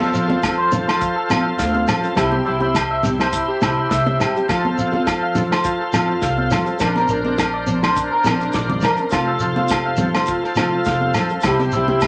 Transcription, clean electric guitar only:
0.00 A4
0.14 F4
0.29 F4
0.58 C5
0.87 C5
1.00 F4
1.16 A4
1.30 F4
1.46 F4
1.58 F5
1.74 F5
1.88 A4
2.17 E4
2.32 G4
2.46 E4
2.62 E4
2.91 E5
3.20 C5
3.33 E4
3.48 G4
3.62 E4
3.78 E4
3.91 E5
4.06 E5
4.19 G4
4.49 F4
4.64 A4
4.78 F4
4.93 F4
5.23 F5
5.52 C5
5.65 F4
5.81 A4
5.94 F4
6.10 F4
6.23 F5
6.38 F5
6.52 F4
6.81 D4
6.97 A#4
7.10 D4
7.26 D4
7.54 D5
7.83 C5
7.96 D4
8.11 A#4
8.41 D4
8.55 D5
8.70 D5
8.83 A#4
9.12 F4
9.28 A4
9.41 F4
9.56 F4
9.85 F5
10.15 C5
10.28 F4
10.44 A4
10.57 F4
10.72 F4
10.86 F5
11.02 F5
11.15 A4
11.44 E4
11.60 G4
11.73 E4
11.89 E4

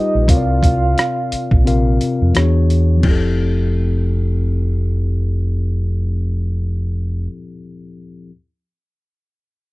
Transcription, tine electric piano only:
Already playing: G3 D#4 F4 G4 B4
0.27 C3 C4 F4 A#4 C#5
0.37 D5
1.64 C3 C4 F4 A#4 F5
2.33 E3 B3 D4 F#4 G#4 C#5
2.97 F3 C4
3.04 E4 G4
3.11 A4

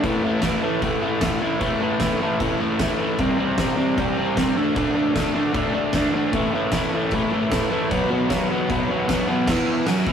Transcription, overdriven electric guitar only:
0.04 A2 E3 A3
0.23 A2 E3 A3
0.43 A2 E3 A3
0.63 A2 E3 A3
0.82 A2 E3 A3
1.01 A2 E3 A3
1.21 A2 E3 A3
1.41 A2 E3 A3
1.60 A2 E3 A3
1.81 A2 E3 A3
2.00 A2 E3 A3
2.21 A2 E3 A3
2.40 A2 E3 A3
2.60 A2 E3 A3
2.80 A2 E3 A3
2.99 A2 E3 A3
3.19 C3 G3 C4
3.38 C3 G3 C4
3.58 C3 G3 C4
3.76 C3 G3 C4
3.98 C3 G3 C4
4.17 C3 G3 C4
4.37 C3 G3 C4
4.56 D3 A3 D4
4.75 D3 A3 D4
4.95 D3 A3 D4
5.14 D3 A3 D4
5.34 D3 A3 D4
5.53 D3 A3 D4
5.73 D3 A3 D4
5.94 D3 A3 D4
6.14 D3 A3 D4
6.33 A2 E3 A3
6.52 A2 E3 A3
6.72 A2 E3 A3
6.93 A2 E3 A3
7.14 A2 E3 A3
7.32 A2 E3 A3
7.51 A2 E3 A3
7.70 A2 E3 A3
7.90 B2 F#3 B3
8.10 B2 F#3 B3
8.29 B2 F#3 B3
8.50 B2 F#3 B3
8.69 B2 F#3 B3
8.89 B2 F#3 B3
9.08 B2 F#3 B3
9.28 B2 F#3 B3
9.48 E2 E3
9.86 F#2 F#3
10.07 E2 E3

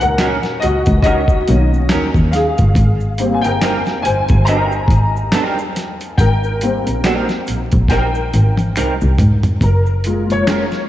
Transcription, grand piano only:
Already playing: A#2 D#3 C#4 B4 G#5
0.00 A#4 F#5
0.60 F#4 D#5
1.02 F#4 D#5
1.47 D#3 A#3 C#4
2.31 G#4 F5
3.18 G3 A#3 C4
3.34 G#5
3.42 A#4 G5
4.02 C5 G#5
4.45 D#5 A#5
6.17 A#4 G5
6.62 G3 A#3 C4
7.89 A#4 G5
9.63 A#4
10.05 G#3 A#3 F4
10.32 C#5

